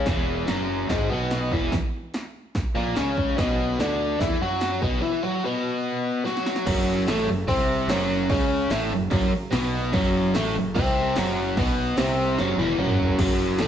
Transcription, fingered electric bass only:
0.07 0.46 E1 loud
0.49 0.87 F#1 medium
0.90 1.09 G#1 medium
1.11 1.49 B1 medium
1.52 1.71 E1 medium
2.77 2.96 A#1 medium
2.98 3.36 C#2 loud
3.38 3.77 B1 loud
3.80 4.18 D2 medium
4.21 4.40 E2 medium
4.41 4.80 F#2 medium
4.83 5.02 B1 medium
6.67 7.06 F#1 loud
7.08 7.27 A1 medium
7.28 7.47 F#1 medium
7.48 7.87 C2 medium
7.88 8.27 F#1 loud
8.29 8.68 C#2 loud
8.71 8.90 A1 loud
8.91 9.11 F#1 medium
9.11 9.31 F#1 medium
9.53 9.92 B1 loud
9.94 10.32 F#1 loud
10.36 10.55 A1 loud
10.56 10.75 F#1 medium
10.76 11.14 C2 medium
11.17 11.55 F#1 loud
11.57 11.95 B1 loud
11.98 12.36 C2 loud
12.39 12.57 F#1 medium
12.58 12.77 E1 loud
12.79 13.17 F#1 loud
13.19 13.57 F#1 loud
13.59 13.68 A1 loud

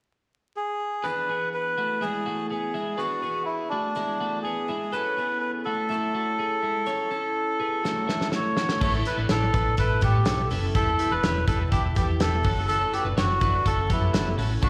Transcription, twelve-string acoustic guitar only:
1.04 2.02 E3 medium
1.04 2.02 B3 medium
1.04 2.02 D4 medium
1.10 2.03 G#4 medium
2.02 2.80 E3 medium
2.02 2.75 B3 medium
2.02 2.75 D4 medium
2.02 2.74 G#4 medium
2.75 2.99 B3 soft
2.75 2.99 D4 soft
2.75 2.99 G#4 soft
2.99 3.23 E3 medium
2.99 3.23 B3 medium
2.99 3.24 D4 medium
2.99 3.22 G#4 medium
3.23 3.94 B3 soft
3.23 3.95 D4 soft
3.23 3.96 G#4 soft
3.95 4.73 E3 medium
3.95 4.69 B3 medium
3.95 4.69 D4 medium
3.95 4.67 G#4 medium
4.68 4.93 B3 soft
4.68 4.94 D4 soft
4.68 4.93 G#4 soft
4.93 5.17 F#3 medium
4.93 5.18 C#4 medium
4.93 5.18 E4 medium
4.93 5.17 A4 medium
5.18 5.90 C#4 soft
5.18 5.92 E4 soft
5.18 5.93 A4 soft
5.89 6.85 F#3 medium
5.89 6.86 C#4 medium
5.89 6.87 E4 medium
5.94 6.89 A4 medium
6.86 7.11 F#3 medium
6.86 7.11 C#4 medium
6.86 7.12 E4 medium
6.86 7.10 A4 medium
7.11 7.84 C#4 soft
7.11 7.86 E4 soft
7.11 7.87 A4 medium
7.85 8.57 F#3 medium
7.85 8.58 C#4 medium
7.85 8.59 E4 medium
7.85 8.57 A4 medium
8.58 8.83 C#4 soft
8.58 8.83 E4 soft
8.58 8.82 A4 soft
8.83 8.94 A3 medium
8.83 8.95 B3 medium
8.83 8.95 E4 medium
8.83 8.93 A4 medium
8.95 9.55 B3 soft
8.95 9.56 E4 medium
8.95 9.55 A4 medium
9.54 10.02 A3 medium
9.54 10.03 B3 medium
9.54 10.05 E4 medium
9.54 10.04 A4 medium
10.03 10.25 A3 medium
10.03 10.26 B3 medium
10.03 10.27 E4 medium
10.03 10.28 A4 medium
10.26 10.49 A3 medium
10.26 10.50 B3 medium
10.26 10.52 E4 medium
10.26 10.52 A4 medium
10.50 10.74 A3 medium
10.50 10.74 B3 medium
10.50 10.75 E4 medium
10.50 10.76 A4 medium
10.75 10.87 E3 medium
10.75 10.87 G3 medium
10.75 10.87 B3 medium
10.75 10.85 E4 medium
10.87 11.48 G3 soft
10.87 11.48 B3 medium
10.87 11.50 E4 medium
11.47 11.95 E3 medium
11.47 11.95 G3 medium
11.47 11.97 B3 medium
11.47 11.98 E4 medium
11.95 12.19 E3 medium
11.95 12.20 G3 medium
11.95 12.21 B3 medium
11.95 12.22 E4 medium
12.20 12.42 E3 medium
12.20 12.43 G3 medium
12.20 12.44 B3 medium
12.20 12.45 E4 medium
12.43 12.68 E3 medium
12.43 12.68 A3 medium
12.43 12.69 C#4 medium
12.43 12.69 F#4 medium
12.68 12.80 F#2 medium
12.68 12.81 C#3 medium
12.68 12.81 E3 medium
12.68 12.81 A3 medium
12.68 12.80 C#4 medium
12.68 12.79 F#4 medium
12.80 13.39 E3 soft
12.80 13.41 A3 medium
12.80 13.41 C#4 medium
12.80 13.43 F#4 medium
13.40 13.88 E3 medium
13.40 13.91 A3 medium
13.40 13.90 C#4 medium
13.40 13.92 F#4 medium
13.90 14.14 E3 medium
13.90 14.14 A3 medium
13.90 14.15 C#4 medium
13.90 14.15 F#4 medium
14.15 14.37 E3 medium
14.15 14.39 A3 medium
14.15 14.39 C#4 medium
14.15 14.40 F#4 medium
14.38 14.62 E3 medium
14.38 14.62 A3 medium
14.38 14.63 C#4 medium
14.38 14.63 F#4 medium
14.63 14.70 B2 medium
14.63 14.70 F#3 medium
14.63 14.70 A3 medium
14.63 14.70 D4 medium
14.63 14.70 F#4 medium

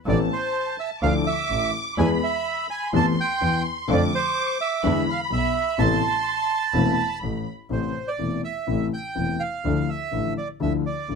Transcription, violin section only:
0.07 0.99 A5 medium
1.03 1.98 D6 medium
1.98 2.89 B5 medium
2.93 3.88 C6 medium
3.89 4.83 D6 medium
4.83 5.79 B5 medium
5.78 6.70 C6 medium
6.74 7.47 B5 medium

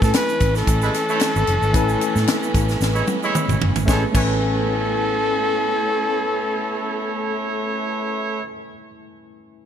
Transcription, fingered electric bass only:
0.02 0.11 A2 loud
0.40 0.61 A1 medium
0.67 0.88 A1 loud
1.36 1.45 G#1 loud
1.48 1.59 F#1 loud
1.62 1.71 G#1 medium
1.74 1.95 A1 loud
2.16 2.25 A2 loud
2.54 2.75 A1 loud
2.81 3.01 A1 loud
3.48 3.58 G#1 loud
3.61 3.72 F#1 loud
3.75 3.85 G#1 medium
3.88 4.04 A1 loud
4.15 8.41 A1 loud

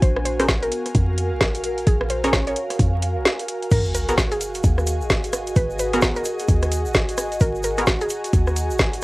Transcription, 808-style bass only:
0.02 0.69 A#1 loud
0.95 1.33 F2 loud
1.32 1.85 A#1 medium
1.87 2.54 A#1 loud
2.79 3.18 F2 loud
3.17 3.25 A#1 medium
3.72 4.39 G#1 loud
4.64 5.03 D#2 loud
5.01 5.54 G#1 medium
5.56 6.23 G#1 loud
6.48 6.87 D#2 loud
6.86 7.39 G#1 medium
7.41 8.08 G#1 loud
8.33 8.72 D#2 loud
8.70 9.04 G#1 medium

